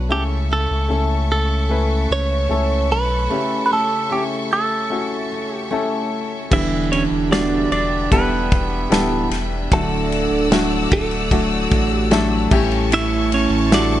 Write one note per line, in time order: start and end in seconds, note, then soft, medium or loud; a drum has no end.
0.00 0.12 B1 medium
0.00 0.10 B2 medium
0.00 0.13 B3 medium
0.00 0.13 D4 medium
0.00 0.19 D4 medium
0.00 0.13 F#4 medium
0.00 0.19 F#4 medium
0.00 0.11 B4 medium
0.00 0.13 B4 medium
0.00 0.14 C#5 medium
0.09 0.67 C#2 medium
0.09 1.27 C#3 medium
0.09 3.29 C#3 medium
0.09 0.86 A3 medium
0.09 0.87 C#4 medium
0.09 0.87 E4 medium
0.09 0.23 G4 medium
0.09 0.90 A4 medium
0.09 6.47 A4 medium
0.09 0.87 A4 medium
0.09 6.47 E5 medium
0.09 6.47 C#6 medium
0.50 2.50 A3 medium
0.50 1.31 A4 medium
0.71 0.90 C#2 medium
0.88 2.07 C#2 medium
0.88 1.66 A3 medium
0.88 1.66 C#4 medium
0.88 1.67 E4 medium
0.88 1.67 A4 medium
0.88 3.30 A4 medium
1.32 2.12 A4 medium
1.70 2.47 A3 medium
1.70 2.47 C#4 medium
1.70 2.47 E4 medium
1.70 2.47 B4 medium
2.10 2.48 C#2 medium
2.10 5.30 C#4 medium
2.10 2.92 C#5 medium
2.49 2.92 C#2 medium
2.49 3.26 A3 medium
2.49 3.69 A3 medium
2.49 3.27 C#4 medium
2.49 3.27 E4 medium
2.49 3.27 A4 medium
2.91 3.28 B1 medium
2.91 3.65 B4 medium
3.30 6.51 C#3 medium
3.30 4.47 C#3 medium
3.30 4.07 A3 medium
3.30 4.07 C#4 medium
3.30 4.07 E4 medium
3.30 4.08 G4 medium
3.30 4.09 A4 medium
3.66 3.72 B4 medium
3.71 5.69 A3 medium
3.71 4.13 A4 medium
4.10 4.87 A3 medium
4.10 4.87 C#4 medium
4.10 4.87 E4 medium
4.10 4.88 G4 medium
4.10 4.23 G4 medium
4.10 6.59 A4 medium
4.53 5.56 A4 medium
4.90 5.67 A3 medium
4.90 5.67 C#4 medium
4.90 5.68 E4 medium
4.90 5.68 F#4 medium
5.31 6.59 C#4 medium
5.56 6.08 G4 medium
5.71 6.59 A3 medium
5.71 6.47 A3 medium
5.71 6.47 C#4 medium
5.71 6.48 E4 medium
5.71 6.48 A4 medium
6.51 7.07 E1 loud
6.51 7.27 D3 medium
6.51 8.48 D3 medium
6.51 9.74 E3 medium
6.51 7.67 E3 medium
6.51 7.27 G3 medium
6.51 9.68 G3 medium
6.51 7.27 B3 medium
6.51 8.48 D4 loud
6.51 7.28 E4 medium
6.51 6.90 E4 medium
6.51 7.28 G4 medium
6.51 9.68 E5 medium
6.51 6.91 E5 loud
6.51 kick loud
6.51 crash loud
6.92 7.03 C#4 medium
6.92 7.03 C#5 medium
6.92 ride medium
7.11 7.67 E1 medium
7.30 8.07 G3 medium
7.30 8.07 B3 medium
7.30 8.11 B3 medium
7.30 8.08 D4 medium
7.30 7.71 D4 medium
7.30 7.70 D4 medium
7.30 8.08 E4 medium
7.30 8.08 F#4 medium
7.30 8.12 G4 medium
7.30 7.71 D5 loud
7.30 snare loud
7.30 ride medium
7.71 8.08 E1 loud
7.71 8.12 D4 medium
7.71 8.10 D4 medium
7.71 8.12 D5 loud
7.71 ride medium
8.11 8.87 E1 loud
8.11 8.87 G3 medium
8.11 8.87 B3 medium
8.11 8.51 B3 medium
8.11 9.28 B3 medium
8.11 8.88 D4 medium
8.11 8.92 D4 medium
8.11 8.88 E4 medium
8.11 8.92 G4 medium
8.11 8.88 A4 medium
8.11 9.28 B4 medium
8.11 kick loud
8.11 ride medium
8.52 8.91 B3 medium
8.52 kick medium
8.52 ride medium
8.90 9.28 D1 loud
8.90 9.31 E3 medium
8.90 9.67 G3 medium
8.90 9.67 B3 medium
8.90 9.80 B3 medium
8.90 9.67 D4 medium
8.90 9.31 D4 medium
8.90 9.68 E4 medium
8.90 9.31 E4 medium
8.90 9.80 G4 medium
8.90 9.68 A4 medium
8.90 snare loud
8.90 ride medium
9.30 9.68 E1 loud
9.30 10.52 D4 medium
9.30 snare soft
9.30 ride medium
9.71 10.28 D1 loud
9.71 12.59 D3 medium
9.71 11.29 D3 medium
9.71 10.88 D3 medium
9.71 10.48 F#3 medium
9.71 10.48 A3 medium
9.71 10.49 A3 medium
9.71 11.29 D4 loud
9.71 10.48 D4 medium
9.71 10.48 E4 medium
9.71 10.49 F#4 medium
9.71 10.48 A4 loud
9.71 12.48 D5 medium
9.71 12.49 F#5 medium
9.71 12.49 E6 medium
9.71 kick loud
9.71 ride medium
10.12 ride medium
10.31 10.87 D1 loud
10.51 11.27 F#3 medium
10.51 11.28 A3 medium
10.51 11.32 A3 medium
10.51 11.28 D4 medium
10.51 10.91 E4 medium
10.51 11.28 E4 medium
10.51 11.28 F#4 medium
10.51 11.32 F#4 medium
10.51 snare loud
10.51 ride medium
10.91 11.68 D1 loud
10.91 12.49 A3 medium
10.91 11.32 E4 medium
10.91 11.96 A4 loud
10.91 kick medium
10.91 ride medium
11.11 ride medium
11.31 12.07 F#3 medium
11.31 12.07 A3 medium
11.31 11.71 A3 medium
11.31 12.07 D4 medium
11.31 12.08 E4 medium
11.31 12.11 E4 medium
11.31 12.08 F#4 medium
11.31 12.11 F#4 medium
11.31 kick medium
11.31 ride medium
11.70 12.47 A1 medium
11.70 12.10 F#3 medium
11.70 12.11 A3 medium
11.70 12.10 F#4 medium
11.70 kick medium
11.70 ride medium
11.96 12.48 G4 loud
12.11 12.51 F#3 medium
12.11 13.70 A3 medium
12.11 12.50 A3 medium
12.11 12.52 D4 medium
12.11 14.00 E4 medium
12.11 12.51 E4 medium
12.11 12.60 F#4 medium
12.11 12.52 A4 loud
12.11 snare loud
12.11 ride medium
12.50 13.47 A1 loud
12.50 12.89 A2 medium
12.50 13.68 A2 medium
12.50 14.00 E3 medium
12.50 13.65 G3 loud
12.50 13.65 A3 medium
12.50 13.66 C#4 medium
12.50 14.00 E4 loud
12.50 13.66 E4 medium
12.50 13.66 G4 loud
12.50 14.00 A4 medium
12.50 14.00 A5 medium
12.50 14.00 C#6 medium
12.50 kick loud
12.50 crash medium
12.72 ride soft
12.91 14.00 A2 medium
12.91 13.30 E4 medium
12.91 13.34 E5 loud
12.91 ride medium
13.32 13.70 C#4 medium
13.32 13.74 C#5 medium
13.32 ride medium
13.50 14.00 A1 loud
13.70 14.00 G3 medium
13.70 14.00 A3 medium
13.70 14.00 D4 medium
13.70 14.00 E4 medium
13.70 14.00 F#4 medium
13.70 14.00 A4 medium
13.70 14.00 D5 medium
13.70 snare loud
13.70 ride medium